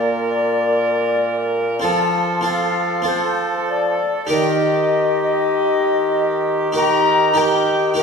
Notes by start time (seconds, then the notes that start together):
Already playing: A#2 A#3 F4 A#4 D5
0.29 D5
1.80 F3 C4 F4 A4
1.84 A5
2.41 C4 F4 A4
2.45 A4 F5
3.02 C4 F4 A4
3.06 A4 C5
3.69 D5
4.27 D#3 D#4 G4 A#4
4.31 D#5
5.23 D#5
6.72 D#4 G4 A#4
6.77 A#5
7.34 D#4 G4 A#4 G5
7.94 D#4 G4 A#4
7.99 G4